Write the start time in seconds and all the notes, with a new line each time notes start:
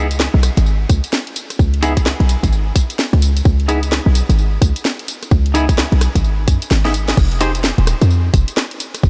Already playing: C#2
0.11 closed hi-hat, tambourine
0.20 snare, tambourine
0.34 B1
0.43 cross-stick, open hi-hat, tambourine
0.57 G#1, closed hi-hat, tambourine
0.66 tambourine
0.90 C#2, kick, cross-stick, open hi-hat, tambourine
1.04 closed hi-hat, tambourine
1.13 snare, tambourine
1.27 closed hi-hat
1.36 open hi-hat, tambourine
1.50 cross-stick, closed hi-hat, tambourine
1.59 C#2, kick, tambourine
1.74 closed hi-hat
1.82 B3 D#4 E4 G#4, open hi-hat, tambourine
1.97 kick, closed hi-hat, tambourine
2.06 snare, tambourine
2.20 B1, closed hi-hat
2.29 open hi-hat, tambourine
2.43 G#1, kick, closed hi-hat, tambourine
2.52 tambourine
2.76 kick, open hi-hat, tambourine
2.90 closed hi-hat, tambourine
2.99 snare, tambourine
3.13 C#2, cross-stick, closed hi-hat
3.22 open hi-hat, tambourine
3.37 closed hi-hat, tambourine
3.45 C#2, kick, tambourine
3.60 closed hi-hat
3.68 B3 D#4 E4 G#4, open hi-hat, tambourine
3.83 closed hi-hat, tambourine
3.92 snare, tambourine
4.06 B1
4.15 open hi-hat, tambourine
4.29 G#1, closed hi-hat, tambourine
4.39 tambourine
4.62 C#2, kick, cross-stick, open hi-hat, tambourine
4.76 closed hi-hat, tambourine
4.85 snare, tambourine
4.99 closed hi-hat
5.08 open hi-hat, tambourine
5.23 cross-stick, closed hi-hat, tambourine
5.31 C#2, kick, tambourine
5.46 closed hi-hat
5.54 B3 D#4 E4 G#4, open hi-hat, tambourine
5.69 kick, closed hi-hat, tambourine
5.78 snare, tambourine
5.92 B1, closed hi-hat
6.01 cross-stick, open hi-hat, tambourine
6.15 G#1, kick, closed hi-hat, tambourine
6.24 tambourine
6.48 F#2, kick, open hi-hat, tambourine
6.62 closed hi-hat, tambourine
6.71 G#1, snare, tambourine
6.85 B3 D#4 E4 G#4, snare, closed hi-hat
6.94 open hi-hat, tambourine
7.08 snare, closed hi-hat, tambourine
7.17 F1, kick, tambourine, crash
7.32 closed hi-hat
7.41 D#4 G4 G#4 C5, open hi-hat, tambourine
7.55 closed hi-hat, tambourine
7.64 snare, tambourine
7.78 D#1, closed hi-hat
7.87 cross-stick, open hi-hat, tambourine
8.02 F2, closed hi-hat, tambourine
8.10 tambourine
8.34 F1, kick, open hi-hat, tambourine
8.48 closed hi-hat, tambourine
8.57 snare, tambourine
8.71 closed hi-hat
8.80 open hi-hat, tambourine
8.95 cross-stick, closed hi-hat, tambourine
9.03 F1, kick, tambourine